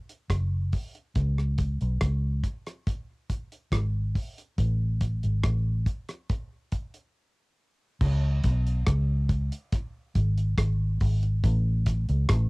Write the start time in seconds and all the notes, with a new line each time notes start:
0.09 closed hi-hat
0.30 F#1, kick, cross-stick, closed hi-hat
0.73 kick, open hi-hat
0.95 closed hi-hat
1.15 C#2, kick, closed hi-hat
1.38 cross-stick
1.58 kick, closed hi-hat
1.81 B1, closed hi-hat
2.01 C#2, kick, cross-stick, closed hi-hat
2.44 kick, closed hi-hat
2.67 cross-stick, closed hi-hat
2.87 kick, closed hi-hat
3.30 kick, closed hi-hat
3.52 closed hi-hat
3.72 G#1, kick, cross-stick, closed hi-hat
4.16 kick, open hi-hat
4.38 closed hi-hat
4.58 A1, kick, closed hi-hat
5.01 kick, closed hi-hat
5.23 G#1, closed hi-hat
5.44 A1, kick, cross-stick, closed hi-hat
5.86 kick, closed hi-hat
6.09 cross-stick, closed hi-hat
6.29 kick, closed hi-hat
6.72 kick, closed hi-hat
6.94 closed hi-hat
8.01 C#2, kick, crash
8.43 B1, kick, closed hi-hat
8.66 closed hi-hat
8.86 C#2, kick, cross-stick, closed hi-hat
9.29 kick, closed hi-hat
9.52 closed hi-hat
9.72 kick, closed hi-hat
10.15 G#1, kick, closed hi-hat
10.37 closed hi-hat
10.58 G#1, kick, cross-stick, closed hi-hat
11.00 G#1, kick, open hi-hat
11.23 closed hi-hat
11.44 A1, kick, closed hi-hat
11.86 kick, closed hi-hat
12.09 C#2, closed hi-hat
12.29 A1, kick, cross-stick, closed hi-hat